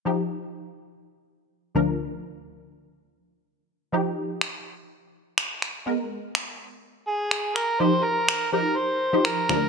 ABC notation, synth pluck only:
X:1
M:4/4
L:1/16
Q:1/4=124
K:Eb
V:1 name="Synth pluck"
[F,EG]12- [F,EG]2 [D,,F,DB]2- | [D,,F,DB]12- [D,,F,DB]2 z2 | [F,EG]16 | [A,_CB]16 |
[F,EG]4 z2 [F,EG]4 z [F,EG]3 [D,,F,DB]2 |]